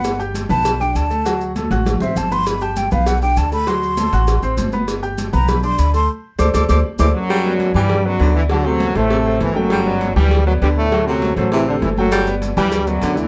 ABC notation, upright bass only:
X:1
M:4/4
L:1/8
Q:1/4=199
K:G
V:1 name="Upright bass" clef=bass
G,,,3 B,,,3 D,,2- | D,,3 A,,,2 A,,, G,,,2- | G,,,3 B,,,3 D,,2- | D,,3 A,,,2 A,,, G,,,2- |
G,,,3 B,,,3 D,,2 | z2 D,, D,, D,, z D,, z | z3 G,,3 D,,2- | D,,3 A,,,3 G,,,2- |
G,,,3 D,,3 D,,2- | D,,3 A,,,3 G,,,2- | G,,,3 D,,3 D,,2 |]